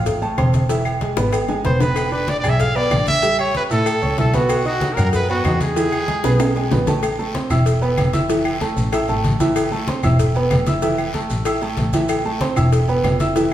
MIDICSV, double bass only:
0, 0, Header, 1, 2, 480
1, 0, Start_track
1, 0, Tempo, 316623
1, 1054, Time_signature, 4, 2, 24, 8
1, 20519, End_track
2, 0, Start_track
2, 0, Title_t, "Double bass"
2, 0, Program_c, 0, 43
2, 0, Note_on_c, 0, 33, 93
2, 521, Note_off_c, 0, 33, 0
2, 571, Note_on_c, 0, 28, 92
2, 1689, Note_off_c, 0, 28, 0
2, 1769, Note_on_c, 0, 32, 91
2, 2442, Note_off_c, 0, 32, 0
2, 2491, Note_on_c, 0, 28, 91
2, 3609, Note_off_c, 0, 28, 0
2, 3695, Note_on_c, 0, 35, 92
2, 4365, Note_off_c, 0, 35, 0
2, 4417, Note_on_c, 0, 33, 96
2, 5532, Note_off_c, 0, 33, 0
2, 5613, Note_on_c, 0, 45, 96
2, 6061, Note_off_c, 0, 45, 0
2, 6092, Note_on_c, 0, 37, 76
2, 6317, Note_off_c, 0, 37, 0
2, 6329, Note_on_c, 0, 35, 93
2, 7448, Note_off_c, 0, 35, 0
2, 7534, Note_on_c, 0, 42, 98
2, 8204, Note_off_c, 0, 42, 0
2, 8254, Note_on_c, 0, 40, 98
2, 9370, Note_off_c, 0, 40, 0
2, 9457, Note_on_c, 0, 35, 97
2, 10126, Note_off_c, 0, 35, 0
2, 10177, Note_on_c, 0, 33, 93
2, 11291, Note_off_c, 0, 33, 0
2, 11369, Note_on_c, 0, 28, 99
2, 12041, Note_off_c, 0, 28, 0
2, 12087, Note_on_c, 0, 29, 90
2, 13206, Note_off_c, 0, 29, 0
2, 13286, Note_on_c, 0, 33, 99
2, 13736, Note_off_c, 0, 33, 0
2, 13769, Note_on_c, 0, 32, 76
2, 13995, Note_off_c, 0, 32, 0
2, 14008, Note_on_c, 0, 33, 93
2, 15126, Note_off_c, 0, 33, 0
2, 15209, Note_on_c, 0, 28, 98
2, 15881, Note_off_c, 0, 28, 0
2, 15931, Note_on_c, 0, 29, 101
2, 17048, Note_off_c, 0, 29, 0
2, 17127, Note_on_c, 0, 33, 98
2, 17799, Note_off_c, 0, 33, 0
2, 17849, Note_on_c, 0, 33, 97
2, 18966, Note_off_c, 0, 33, 0
2, 19047, Note_on_c, 0, 28, 101
2, 19719, Note_off_c, 0, 28, 0
2, 19768, Note_on_c, 0, 29, 96
2, 20519, Note_off_c, 0, 29, 0
2, 20519, End_track
0, 0, End_of_file